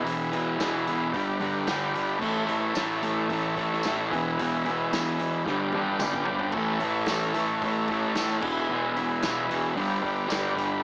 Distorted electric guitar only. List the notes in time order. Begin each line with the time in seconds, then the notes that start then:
0.03 E2 B2 E3
0.32 B2 E3
0.59 E2 B2 E3
0.87 E2 B2 E3
1.14 G2 D3 G3
1.40 G2 D3 G3
1.67 G2 D3 G3
1.95 D3 G3
2.19 A2 E3 A3
2.46 A3
2.50 E3
2.75 A2 E3 A3
3.02 A2 E3 A3
3.28 A2 E3 A3
3.56 A2 E3 A3
3.85 A2 E3 A3
4.12 E2 B2 E3
4.39 E2 B2 E3
4.66 E3
4.71 B2
4.92 E2 B2 E3
5.20 E2 B2 E3
5.46 G2 D3 G3
5.74 G2 D3 G3
5.99 G2 D3
6.04 G3
6.28 D3 G3
6.55 A2 E3 A3
6.80 A3
6.84 E3
7.08 A2 E3 A3
7.35 A2 E3 A3
7.62 A2 E3 A3
7.89 A2 E3 A3
8.16 A2 E3 A3
8.41 E2 B2 E3
8.69 E2 B2 E3
8.97 B2 E3
9.23 E2 B2 E3
9.48 B2 E3
9.53 E2
9.75 G2 D3
9.80 G3
10.02 D3 G3
10.06 G2
10.28 G2 D3 G3
10.56 D3 G3